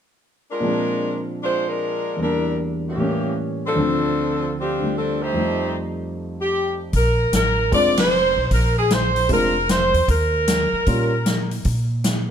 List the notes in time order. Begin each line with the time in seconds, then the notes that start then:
0.51 G#3 D4 F4 A#4
0.60 A#2 F3 G#3
0.64 C4 D4
1.43 G#3 D4 F4 C5
1.69 G#3 D4 F4 A#4
2.17 E2 E3 G3
2.21 G3 A#3 D4 E4 A#4
2.88 E3 A#3 C#4 G4
2.96 A2 E3 G3 A#3
3.01 C#4
3.66 F3 C4 D4 A4
3.75 D2 D3 F3 A3
3.80 C4
4.60 F3 C4 D4 G4
4.80 D3 G3 A3
4.98 F3 C4 D4 A4
5.22 A3 D#4 G4 C5
5.33 F2 F3 G3 A3
5.38 D#4
6.41 G4
6.93 A#1 A#4, kick, open hi-hat
7.32 A1 A#4, snare, closed hi-hat
7.71 F1 G#3 C4 D4 F4 D5, kick, open hi-hat
7.97 C5, snare, ride
8.36 B1
8.51 A#1 A#4, kick, open hi-hat
8.79 G#4
8.90 C5, snare, closed hi-hat
9.16 open hi-hat
9.29 F1 G#3 C4 D4 F4 A#4, kick, open hi-hat
9.69 C5, snare, closed hi-hat
9.94 E2, open hi-hat
10.08 D#2 A#4, kick, open hi-hat
10.47 snare, closed hi-hat
10.73 muted upright bass stroke
10.86 A#2 G3 A#3 C#4 F4, kick, open hi-hat
11.26 snare, closed hi-hat
11.51 open hi-hat
11.64 A#2, kick, open hi-hat
12.04 snare, closed hi-hat